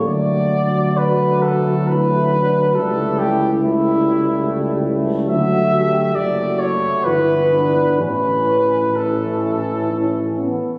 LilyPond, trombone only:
\new Staff \with { instrumentName = "Trombone" } { \clef bass \time 3/4 \key d \major \tempo 4 = 67 fis2. | g4 g2 | fis4 fis8 r8 e4 | e4 e4. r8 | }